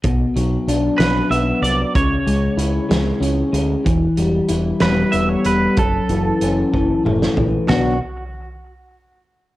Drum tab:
HH |x-x-x-x-x-x-|x-x-x-x-x-x-|x-x-x-x-x-x-|x-x-x-------|
SD |------o-----|------o-----|------o-----|---------o--|
T2 |------------|------------|------------|--------o---|
FT |------------|------------|------------|----------o-|
BD |o-----------|o-----------|o-----------|o-----o-----|

HH |------------|
SD |o-----------|
T2 |------------|
FT |o-----------|
BD |------------|